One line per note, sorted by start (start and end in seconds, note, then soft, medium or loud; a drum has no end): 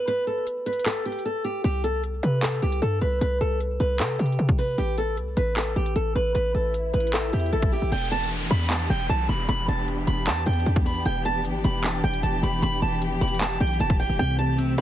0.08 0.25 B4 loud
0.08 closed hi-hat medium
0.27 0.44 A4 medium
0.47 closed hi-hat medium
0.66 0.84 B4 medium
0.66 closed hi-hat medium
0.73 closed hi-hat medium
0.79 closed hi-hat medium
0.86 1.03 A4 medium
0.86 clap loud
0.86 closed hi-hat medium
1.06 1.23 G4 medium
1.06 closed hi-hat medium
1.12 closed hi-hat medium
1.19 closed hi-hat soft
1.25 1.43 A4 medium
1.44 1.62 G4 medium
1.64 2.21 C2 loud
1.64 1.81 G4 loud
1.64 closed hi-hat medium
1.84 2.01 A4 medium
1.84 closed hi-hat medium
2.04 closed hi-hat medium
2.23 2.61 C3 loud
2.23 2.40 B4 medium
2.23 closed hi-hat medium
2.43 2.60 A4 medium
2.43 clap loud
2.43 closed hi-hat medium
2.62 2.81 C2 loud
2.62 2.80 G4 medium
2.62 closed hi-hat medium
2.72 closed hi-hat soft
2.82 3.01 G2 loud
2.82 2.99 A4 medium
2.82 closed hi-hat medium
3.01 3.20 C2 loud
3.01 3.19 B4 medium
3.21 3.40 C2 loud
3.21 3.39 B4 loud
3.21 closed hi-hat medium
3.41 3.78 C2 loud
3.41 3.58 A4 medium
3.61 closed hi-hat medium
3.80 4.01 C2 loud
3.80 3.97 B4 medium
3.80 closed hi-hat medium
4.00 4.18 C3 loud
4.00 4.17 A4 medium
4.00 clap loud
4.00 closed hi-hat medium
4.19 4.38 C3 loud
4.19 4.56 G4 medium
4.19 closed hi-hat medium
4.26 closed hi-hat medium
4.32 closed hi-hat soft
4.39 4.77 C3 loud
4.39 closed hi-hat medium
4.49 kick loud
4.49 closed hi-hat soft
4.58 4.76 B4 medium
4.58 open hi-hat medium
4.78 5.19 A1 loud
4.78 4.95 G4 loud
4.78 closed hi-hat medium
4.98 5.15 A4 medium
4.98 closed hi-hat medium
5.17 5.36 C2 loud
5.17 closed hi-hat medium
5.37 5.75 A1 loud
5.37 5.54 B4 medium
5.37 closed hi-hat medium
5.56 5.74 A4 medium
5.56 clap loud
5.56 closed hi-hat medium
5.76 5.95 A1 loud
5.76 5.93 G4 medium
5.76 closed hi-hat medium
5.86 closed hi-hat soft
5.96 6.15 A1 loud
5.96 6.13 A4 medium
5.96 closed hi-hat medium
6.15 6.34 A1 loud
6.15 6.33 B4 medium
6.35 6.54 A1 loud
6.35 6.52 B4 loud
6.35 closed hi-hat medium
6.35 swell medium
6.55 6.92 A1 loud
6.55 6.72 A4 medium
6.74 closed hi-hat medium
6.93 7.31 A1 loud
6.93 7.11 B4 medium
6.93 closed hi-hat medium
7.00 closed hi-hat medium
7.07 closed hi-hat medium
7.13 7.31 A4 medium
7.13 clap loud
7.13 closed hi-hat medium
7.33 7.52 E2 loud
7.33 7.50 G4 medium
7.33 closed hi-hat medium
7.40 closed hi-hat medium
7.46 closed hi-hat soft
7.53 7.81 A1 loud
7.53 7.70 A4 medium
7.53 closed hi-hat medium
7.62 kick loud
7.72 7.90 G4 medium
7.72 open hi-hat medium
7.82 7.91 A1 loud
7.92 8.48 E1 loud
7.92 14.81 E3 medium
7.92 14.15 B3 medium
7.92 14.15 D4 medium
7.92 14.81 G4 medium
7.92 8.09 G5 loud
7.92 closed hi-hat medium
7.92 downlifter medium
8.11 8.29 A5 medium
8.11 closed hi-hat medium
8.31 closed hi-hat medium
8.50 8.88 E2 loud
8.50 8.68 B5 medium
8.50 closed hi-hat medium
8.70 8.87 A5 medium
8.70 clap loud
8.70 closed hi-hat medium
8.90 9.09 E1 loud
8.90 9.07 G5 medium
8.90 closed hi-hat medium
9.00 closed hi-hat soft
9.09 9.28 B1 loud
9.09 9.27 A5 medium
9.09 closed hi-hat medium
9.29 9.48 E1 loud
9.29 9.46 B5 medium
9.49 9.67 E1 loud
9.49 9.66 B5 loud
9.49 closed hi-hat medium
9.68 10.06 E1 loud
9.68 9.86 A5 medium
9.88 closed hi-hat medium
10.07 10.29 E1 loud
10.07 10.25 B5 medium
10.07 closed hi-hat medium
10.27 10.46 E2 loud
10.27 10.44 A5 medium
10.27 clap loud
10.27 closed hi-hat medium
10.46 10.66 E2 loud
10.46 10.83 G5 medium
10.46 closed hi-hat medium
10.53 closed hi-hat medium
10.60 closed hi-hat soft
10.66 11.04 E2 loud
10.66 closed hi-hat medium
10.76 kick loud
10.76 closed hi-hat soft
10.86 11.03 B5 medium
10.86 open hi-hat medium
11.06 11.46 E1 loud
11.06 11.23 G5 medium
11.06 closed hi-hat medium
11.25 11.42 A5 medium
11.25 closed hi-hat medium
11.45 11.63 G1 loud
11.45 closed hi-hat medium
11.64 12.02 E1 loud
11.64 11.82 B5 medium
11.64 closed hi-hat medium
11.84 12.01 A5 medium
11.84 clap loud
11.84 closed hi-hat medium
12.04 12.22 E1 loud
12.04 12.21 G5 medium
12.04 closed hi-hat medium
12.13 closed hi-hat soft
12.23 12.42 E1 loud
12.23 12.40 A5 medium
12.23 closed hi-hat medium
12.43 12.62 E1 loud
12.43 12.60 B5 medium
12.62 12.81 E1 loud
12.62 12.80 B5 loud
12.62 closed hi-hat medium
12.82 13.20 E1 loud
12.82 12.99 A5 medium
13.02 closed hi-hat medium
13.21 13.59 E1 loud
13.21 13.38 B5 medium
13.21 closed hi-hat medium
13.28 closed hi-hat medium
13.34 closed hi-hat medium
13.41 13.58 A5 medium
13.41 clap loud
13.41 closed hi-hat medium
13.60 13.79 B1 loud
13.60 13.78 G5 medium
13.60 closed hi-hat medium
13.67 closed hi-hat medium
13.74 closed hi-hat soft
13.80 14.08 E1 loud
13.80 13.98 A5 medium
13.80 closed hi-hat medium
13.90 kick loud
14.00 14.17 G5 medium
14.00 open hi-hat loud
14.09 14.19 E1 loud
14.19 14.76 C2 loud
14.19 14.81 C3 medium
14.19 14.81 A3 medium
14.19 14.81 C4 medium
14.19 14.36 G5 loud
14.19 closed hi-hat medium
14.39 14.56 A5 medium
14.39 closed hi-hat medium
14.58 14.77 C4 medium
14.58 closed hi-hat medium
14.78 14.81 C4 medium